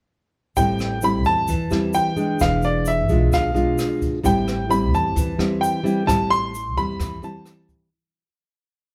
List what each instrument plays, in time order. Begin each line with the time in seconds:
0.56 upright bass A1, nylon-string guitar A2 G3 C4 E4, grand piano G5, kick, closed hi-hat, shaker
0.79 cross-stick, closed hi-hat, shaker
1.01 nylon-string guitar G3 C4 E4, grand piano B5, closed hi-hat, shaker
1.25 upright bass E2, grand piano A5, closed hi-hat, shaker
1.48 upright bass E2, nylon-string guitar E3, kick, closed hi-hat, shaker
1.70 upright bass E2, nylon-string guitar G3 C4 E4, cross-stick, closed hi-hat, shaker
1.93 grand piano G5, closed hi-hat, shaker
2.16 nylon-string guitar G#3 D4, closed hi-hat, shaker
2.39 upright bass E1, nylon-string guitar E3, grand piano F5, kick, cross-stick, closed hi-hat, shaker
2.62 grand piano D5, closed hi-hat, shaker
2.85 grand piano E5, closed hi-hat, shaker
3.09 upright bass B1, nylon-string guitar G#3 D4 F4, kick, closed hi-hat, shaker
3.32 nylon-string guitar B2, grand piano F5, kick, cross-stick, closed hi-hat, shaker
3.54 upright bass B1, nylon-string guitar G#3 D4 F4, closed hi-hat, shaker
3.78 cross-stick, closed hi-hat, shaker
4.02 kick, closed hi-hat, shaker
4.23 upright bass A1, nylon-string guitar A2 G3 C4 E4, grand piano G5, kick, closed hi-hat, shaker
4.48 cross-stick, closed hi-hat, shaker
4.69 nylon-string guitar G3 C4 E4, grand piano B5, closed hi-hat, shaker
4.93 upright bass E2, grand piano A5, closed hi-hat, shaker
5.16 upright bass E2, nylon-string guitar E3, kick, closed hi-hat, shaker
5.38 upright bass E2, nylon-string guitar G3 C4 E4, cross-stick, closed hi-hat, shaker
5.61 grand piano G5, closed hi-hat, shaker
5.84 nylon-string guitar G3 C4 E4, closed hi-hat, shaker
6.06 upright bass A1, nylon-string guitar A2 G3 C4 E4, grand piano A5, kick, cross-stick, closed hi-hat, shaker
6.30 grand piano C6, closed hi-hat, shaker
6.54 closed hi-hat, shaker
6.77 upright bass E2, nylon-string guitar G3 C4 E4, grand piano B5, kick, closed hi-hat, shaker
7.00 upright bass E2, nylon-string guitar E3, kick, cross-stick, closed hi-hat, shaker
7.22 upright bass E2, nylon-string guitar G3 C4 E4, grand piano A5, closed hi-hat, shaker
7.46 cross-stick, closed hi-hat, shaker
7.69 kick, closed hi-hat, shaker